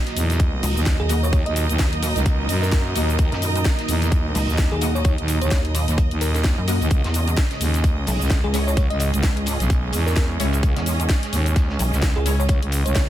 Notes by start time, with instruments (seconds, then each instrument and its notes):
Already playing: analog synth pad A#3 D#4 F#4, string section C#4 D#4 G#4 A#4 D#5
0.07 snare, closed hi-hat
0.17 fm bass E2, closed hi-hat, open hi-hat, cabasa
0.30 snare, closed hi-hat, cabasa
0.40 kick, closed hi-hat, cabasa
0.63 wobble bass C#2, open hi-hat, cabasa
0.76 fm bass D#2, cabasa
0.86 kick, snare, closed hi-hat, cabasa
1.00 wobble bass D#2, fm electric piano G#4
1.09 synth stab A#3 F#4 D#5, closed hi-hat, open hi-hat, cabasa
1.23 fm electric piano C#5, cabasa
1.33 fm bass D#2, fm electric piano C#5, kick, closed hi-hat, cabasa
1.46 fm bass D#2, fm electric piano D#5, closed hi-hat
1.56 fm electric piano D#5, closed hi-hat, open hi-hat, cabasa
1.69 fm bass D#2, closed hi-hat, cabasa
1.79 wobble bass D#2, kick, snare, closed hi-hat, cabasa
1.93 closed hi-hat
2.02 closed hi-hat, open hi-hat, cabasa
2.16 fm bass C#2, snare, closed hi-hat, cabasa
2.26 kick, closed hi-hat, cabasa
2.49 fm bass F#2, closed hi-hat, open hi-hat, cabasa
2.62 fm electric piano A#4, snare, cabasa
2.72 fm electric piano A#4, kick, snare, closed hi-hat, cabasa
2.95 fm bass D#2, synth stab A#3 F#4 D#5, closed hi-hat, open hi-hat, cabasa
3.09 closed hi-hat, cabasa
3.19 fm bass D#2, kick, closed hi-hat, cabasa
3.32 wobble bass F#2, snare, closed hi-hat
3.42 closed hi-hat, open hi-hat, cabasa
3.56 closed hi-hat, cabasa
3.65 kick, snare, closed hi-hat, cabasa
3.79 snare, closed hi-hat
3.88 fm bass E2, closed hi-hat, open hi-hat, cabasa
4.02 snare, closed hi-hat, cabasa
4.12 kick, closed hi-hat, cabasa
4.35 wobble bass C#2, open hi-hat, cabasa
4.49 fm bass D#2, cabasa
4.58 kick, snare, closed hi-hat, cabasa
4.72 wobble bass D#2, fm electric piano G#4
4.81 synth stab A#3 F#4 D#5, closed hi-hat, open hi-hat, cabasa
4.95 fm electric piano C#5, cabasa
5.05 fm bass D#2, fm electric piano C#5, kick, closed hi-hat, cabasa
5.18 fm bass D#2, closed hi-hat
5.28 closed hi-hat, open hi-hat, cabasa
5.42 fm bass D#2, fm electric piano C#5, closed hi-hat, cabasa
5.51 wobble bass D#2, kick, snare, closed hi-hat, cabasa
5.65 closed hi-hat
5.75 closed hi-hat, open hi-hat, cabasa
5.88 wobble bass D#2, snare, closed hi-hat, cabasa
5.98 kick, closed hi-hat, cabasa
6.11 fm bass D#2, closed hi-hat
6.21 fm electric piano A#4, closed hi-hat, open hi-hat, cabasa
6.34 fm electric piano A#4, snare, closed hi-hat, cabasa
6.44 kick, snare, closed hi-hat, cabasa
6.58 wobble bass F#2
6.68 synth stab A#3 F#4 D#5, closed hi-hat, open hi-hat, cabasa
6.81 fm bass D#2, closed hi-hat, cabasa
6.91 fm bass C#2, analog synth pad G#3 C#4 G#4, string section C#4, kick, closed hi-hat, cabasa
7.04 wobble bass E2, snare, closed hi-hat
7.10 string section G#4
7.14 closed hi-hat, open hi-hat, cabasa
7.28 closed hi-hat, cabasa
7.37 kick, snare, closed hi-hat, cabasa
7.51 snare, closed hi-hat
7.61 fm bass D#2, closed hi-hat, open hi-hat, cabasa
7.73 snare, closed hi-hat, cabasa
7.84 kick, closed hi-hat, cabasa
8.07 wobble bass B1, open hi-hat, cabasa
8.21 fm bass C#2, cabasa
8.30 kick, snare, closed hi-hat, cabasa
8.44 wobble bass C#2, fm electric piano G#4
8.54 synth stab G#3 E4 C#5, closed hi-hat, open hi-hat, cabasa
8.67 fm electric piano C#5, cabasa
8.77 fm bass C#2, fm electric piano C#5, kick, closed hi-hat, cabasa
8.90 fm bass C#2, fm electric piano D#5, closed hi-hat
9.00 fm electric piano D#5, closed hi-hat, open hi-hat, cabasa
9.14 fm bass C#2, closed hi-hat, cabasa
9.22 wobble bass C#2, kick, snare, closed hi-hat, cabasa
9.37 closed hi-hat
9.46 closed hi-hat, open hi-hat, cabasa
9.60 fm bass B1, snare, closed hi-hat, cabasa
9.70 kick, closed hi-hat, cabasa
9.93 fm bass E2, closed hi-hat, open hi-hat, cabasa
10.07 fm electric piano A#4, snare, cabasa
10.16 kick, snare, closed hi-hat, cabasa
10.40 fm bass C#2, synth stab G#3 E4 C#5, closed hi-hat, open hi-hat, cabasa
10.53 closed hi-hat, cabasa
10.63 fm bass C#2, kick, closed hi-hat, cabasa
10.76 wobble bass E2, snare, closed hi-hat
10.86 closed hi-hat, open hi-hat, cabasa
11.00 closed hi-hat, cabasa
11.09 kick, snare, closed hi-hat, cabasa
11.23 snare, closed hi-hat
11.33 fm bass D#2, closed hi-hat, open hi-hat, cabasa
11.46 closed hi-hat, cabasa
11.56 kick, snare, closed hi-hat, cabasa
11.69 snare
11.79 wobble bass B1, closed hi-hat, open hi-hat, cabasa
11.93 fm bass C#2, snare, cabasa
12.02 kick, snare, closed hi-hat, cabasa
12.16 wobble bass C#2, fm electric piano G#4
12.26 synth stab G#3 E4 C#5, closed hi-hat, open hi-hat, cabasa
12.39 fm electric piano C#5, cabasa
12.49 fm bass C#2, fm electric piano C#5, kick, closed hi-hat, cabasa
12.62 fm bass C#2, closed hi-hat
12.72 closed hi-hat, open hi-hat, cabasa
12.86 fm bass C#2, fm electric piano C#5, closed hi-hat, cabasa
12.95 wobble bass C#2, kick, snare, closed hi-hat, cabasa